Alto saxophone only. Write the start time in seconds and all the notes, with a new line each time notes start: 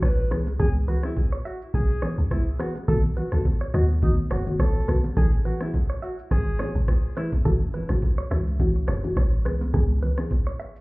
0.03 B4
0.60 G#4
0.89 F#4
1.04 E4
1.46 F#4
1.74 G#4
2.31 E4
2.60 F#4
2.89 A4
3.17 F#4
3.33 A4
3.74 F#4
4.03 D#4
4.32 F#4
4.60 A4
5.17 G#4
5.46 F#4
5.62 E4
6.03 F#4
6.32 G#4
7.17 E4